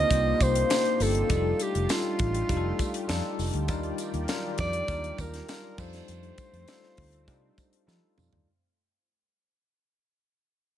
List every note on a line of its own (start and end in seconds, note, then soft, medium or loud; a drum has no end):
0.00 1.27 C3 medium
0.00 0.10 A#3 loud
0.00 1.27 A#3 medium
0.00 1.27 C4 medium
0.00 0.70 D4 medium
0.00 0.11 D#4 medium
0.00 0.12 F4 medium
0.00 8.43 F4 medium
0.00 3.65 G4 medium
0.00 1.32 B4 medium
0.00 0.12 C5 loud
0.00 0.44 D#5 loud
0.10 0.32 C2 loud
0.10 0.64 A#3 medium
0.10 0.65 C4 medium
0.10 0.65 D#4 medium
0.10 0.65 F4 medium
0.10 0.65 C5 medium
0.10 kick medium
0.10 closed hi-hat medium
0.10 tambourine soft
0.41 0.62 C2 loud
0.41 1.04 C5 loud
0.41 kick medium
0.41 closed hi-hat medium
0.41 tambourine medium
0.55 closed hi-hat medium
0.69 1.24 A#3 medium
0.69 1.24 D4 medium
0.69 1.24 D#4 medium
0.69 1.24 F4 medium
0.69 1.24 C5 medium
0.69 snare loud
0.69 closed hi-hat medium
0.69 tambourine medium
0.85 closed hi-hat soft
1.00 1.22 G1 loud
1.00 1.64 A4 loud
1.00 open hi-hat medium
1.00 tambourine medium
1.15 closed hi-hat medium
1.29 1.52 F1 loud
1.29 1.83 G3 medium
1.29 3.67 A3 medium
1.29 1.84 D4 medium
1.29 1.84 D#4 medium
1.29 1.84 F4 medium
1.29 1.37 G#4 medium
1.29 kick loud
1.29 closed hi-hat medium
1.29 tambourine soft
1.37 1.87 A4 medium
1.60 1.93 G4 loud
1.60 closed hi-hat medium
1.60 tambourine soft
1.75 1.86 F1 medium
1.75 closed hi-hat medium
1.89 2.43 G3 medium
1.89 2.43 D4 medium
1.89 2.43 D#4 medium
1.89 2.44 F4 medium
1.89 3.40 F4 medium
1.89 2.44 A4 medium
1.89 snare loud
1.89 closed hi-hat medium
1.89 tambourine medium
2.19 2.41 A1 medium
2.19 kick loud
2.19 closed hi-hat medium
2.34 closed hi-hat medium
2.49 2.71 F1 loud
2.49 3.03 G3 medium
2.49 3.03 D4 medium
2.49 3.03 D#4 medium
2.49 3.04 F4 medium
2.49 2.56 G4 medium
2.49 kick medium
2.49 closed hi-hat medium
2.49 tambourine soft
2.57 3.07 A4 medium
2.79 kick medium
2.79 closed hi-hat medium
2.79 tambourine medium
2.94 closed hi-hat medium
3.08 3.20 F2 medium
3.08 3.63 G3 medium
3.08 3.63 D4 medium
3.08 3.63 D#4 medium
3.08 3.63 F4 medium
3.08 3.63 A4 loud
3.08 snare loud
3.08 closed hi-hat medium
3.08 tambourine medium
3.39 3.50 F1 loud
3.39 open hi-hat medium
3.39 tambourine medium
3.54 3.69 D2 medium
3.54 closed hi-hat soft
3.68 3.90 D#2 loud
3.68 5.76 D#3 medium
3.68 4.23 G3 loud
3.68 4.23 D4 medium
3.68 4.23 D#4 medium
3.68 4.23 F4 loud
3.68 5.76 G4 medium
3.68 4.23 A#4 loud
3.68 5.76 D5 medium
3.68 kick loud
3.68 closed hi-hat medium
3.68 tambourine soft
3.83 closed hi-hat soft
3.98 closed hi-hat medium
3.98 tambourine soft
4.14 4.24 D#2 medium
4.14 closed hi-hat soft
4.28 4.35 F#3 medium
4.28 4.83 D4 medium
4.28 4.83 D#4 medium
4.28 4.83 F4 medium
4.28 4.83 A#4 loud
4.28 snare loud
4.28 closed hi-hat medium
4.28 tambourine medium
4.35 4.86 G3 medium
4.58 4.80 F2 medium
4.58 5.22 D5 loud
4.58 kick loud
4.58 closed hi-hat medium
4.58 tambourine soft
4.73 closed hi-hat medium
4.88 5.10 D#2 loud
4.88 5.42 G3 medium
4.88 5.42 D4 medium
4.88 5.43 D#4 medium
4.88 5.43 F4 medium
4.88 5.43 A#4 medium
4.88 kick medium
4.88 closed hi-hat medium
4.88 tambourine soft
5.04 closed hi-hat soft
5.18 5.40 D#2 loud
5.18 5.82 A#4 loud
5.18 kick medium
5.18 closed hi-hat medium
5.18 tambourine medium
5.34 snare soft
5.34 closed hi-hat medium
5.48 5.77 G3 medium
5.48 5.77 D4 medium
5.48 5.77 D#4 medium
5.48 5.78 F4 medium
5.48 5.79 A#4 medium
5.48 snare loud
5.48 closed hi-hat medium
5.48 tambourine medium
5.78 6.00 F2 loud
5.78 6.59 G3 medium
5.78 8.45 A3 medium
5.78 8.45 C4 medium
5.78 6.59 D4 medium
5.78 6.59 D#4 medium
5.78 6.60 F4 medium
5.78 6.60 A4 medium
5.78 7.89 C5 loud
5.78 kick loud
5.78 tambourine medium
5.78 crash medium
5.93 snare soft
5.93 closed hi-hat medium
6.08 6.30 F2 loud
6.08 closed hi-hat medium
6.08 tambourine soft
6.23 closed hi-hat soft
6.38 kick loud
6.38 closed hi-hat medium
6.38 tambourine soft
6.53 6.64 F2 medium
6.53 closed hi-hat soft
6.68 7.22 G3 medium
6.68 7.22 D4 medium
6.68 7.22 D#4 medium
6.68 7.22 F4 medium
6.68 7.22 A4 loud
6.68 snare loud
6.68 closed hi-hat medium
6.68 tambourine medium
6.83 snare soft
6.97 7.28 D2 medium
6.97 kick medium
6.97 open hi-hat medium
7.13 closed hi-hat medium
7.27 7.50 C3 medium
7.27 7.82 G3 medium
7.27 7.82 D4 medium
7.27 7.82 D#4 medium
7.27 7.82 F4 medium
7.27 7.82 C5 medium
7.27 kick medium
7.27 closed hi-hat medium
7.27 tambourine soft
7.58 kick medium
7.58 closed hi-hat medium
7.58 tambourine medium
7.73 closed hi-hat medium
7.87 7.98 F3 medium
7.87 8.41 G3 medium
7.87 8.41 D4 medium
7.87 8.42 D#4 medium
7.87 8.42 F4 medium
7.87 8.42 A4 medium
7.87 snare medium
7.87 tambourine medium
8.18 8.29 F2 loud
8.18 mid tom medium
8.18 tambourine soft
8.33 8.44 D#2 medium
8.33 floor tom medium